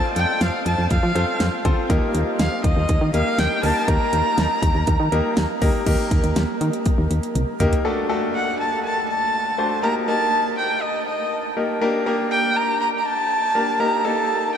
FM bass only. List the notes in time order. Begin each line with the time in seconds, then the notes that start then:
0.16 F2
0.41 F2
0.66 F2
0.78 F2
0.91 F2
1.03 F3
1.15 F2
1.40 F2
1.65 D2
1.90 D#2
2.15 D#2
2.39 D#2
2.64 D#2
2.76 D#2
2.89 D#2
3.01 D#3
3.14 D#2
3.38 D#2
3.63 D2
3.88 D#2
4.13 D#2
4.38 D#2
4.62 D#2
4.75 D#2
4.88 D#2
5.00 D#3
5.12 D#2
5.37 D#2
5.62 D2
5.87 D#2
6.11 D#2
6.24 D#2
6.36 D#2
6.61 D#3
6.98 D#2
7.11 D#2
7.35 C2
7.60 D2